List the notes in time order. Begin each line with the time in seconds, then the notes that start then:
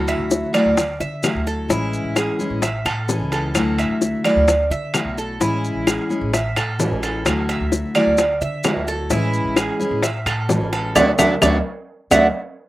Already playing: D2 D3 F#3 A3 E4 F#4
0.08 E5, high timbale, maracas
0.20 D2
0.31 high bongo, maracas
0.53 F#3 A3 E4 F#4 D5, high bongo, high timbale, claves, maracas
0.66 D2
0.77 muted steel-string acoustic guitar stroke, high bongo, high timbale, maracas
1.00 D3 E5, high bongo, maracas
1.22 F#3 A3 E4 F#4, high bongo, low bongo, high timbale, claves, maracas
1.35 D2
1.47 A4, high bongo, maracas
1.68 A1 E3 G#3 C#4 E4, high bongo, maracas
1.93 maracas
2.04 A1
2.16 G#4, high bongo, high timbale, claves, maracas
2.39 G#3 C#4 E4, high bongo, maracas
2.50 A1
2.62 E5, muted steel-string acoustic guitar stroke, high bongo, high timbale, maracas
2.85 A2 A4, high bongo, high timbale, claves, maracas
3.08 E3 G#3 C#4 E4, high bongo, low bongo, maracas
3.20 C#2
3.32 A4, high bongo, high timbale, maracas
3.54 D2 D3 F#3 A3 E4 F#4, high bongo, high timbale, claves, maracas
3.78 E5, high timbale, maracas
4.01 high bongo, maracas
4.24 F#3 A3 E4 F#4 D5, high bongo, high timbale, claves, maracas
4.36 D2
4.47 muted steel-string acoustic guitar stroke, high bongo, high timbale, maracas
4.70 D3 E5, high bongo, maracas
4.93 F#3 A3 E4 F#4, high bongo, low bongo, high timbale, claves, maracas
5.05 B1
5.18 A4, high bongo, maracas
5.40 A1 E3 G#3 C#4 E4, high bongo, maracas
5.65 maracas
5.75 A1
5.87 G#4, high bongo, high timbale, claves, maracas
6.09 G#3 C#4 E4, high bongo, maracas
6.21 A1
6.33 E5, muted steel-string acoustic guitar stroke, high bongo, high timbale, maracas
6.56 A2 A4, high bongo, high timbale, claves, maracas
6.79 E3 G#3 C#4 E4, high bongo, low bongo, low timbale, maracas
6.91 A1
7.03 A4, high bongo, high timbale, maracas
7.25 D2 D3 F#3 A3 E4 F#4, high bongo, high timbale, claves, maracas
7.49 E5, high timbale, maracas
7.60 D2
7.72 high bongo, maracas
7.95 F#3 A3 E4 F#4 D5, high bongo, high timbale, claves, maracas
8.07 D2
8.18 muted steel-string acoustic guitar stroke, high bongo, high timbale, maracas
8.41 D3 E5, high bongo, maracas
8.64 F#3 A3 E4 F#4, high bongo, low bongo, high timbale, low timbale, claves, maracas
8.76 D2
8.88 A4, high bongo, maracas
9.10 A1 E3 G#3 C#4 E4, high bongo, maracas
9.34 maracas
9.45 A1
9.56 G#4, high bongo, high timbale, claves, maracas
9.80 G#3 C#4 E4, high bongo, maracas
9.91 A1
10.03 E5, muted steel-string acoustic guitar stroke, high bongo, high timbale, maracas
10.26 A2 A4, high bongo, high timbale, claves, maracas
10.49 E3 G#3 C#4 E4, high bongo, low bongo, low timbale, maracas
10.61 A1
10.73 A4, high bongo, high timbale, maracas
10.95 D2 F#3 A3 D4 D5 E5 F#5, low bongo, high timbale, claves, maracas
11.18 D2 F#3 A3 D4 D5 E5 F#5, low bongo, high timbale, claves, maracas
11.42 D2 F#3 A3 D4 D5 E5 F#5, low bongo, high timbale, claves, maracas
12.11 D2 F#3 A3 D4 D5 E5 F#5, low bongo, high timbale, claves, maracas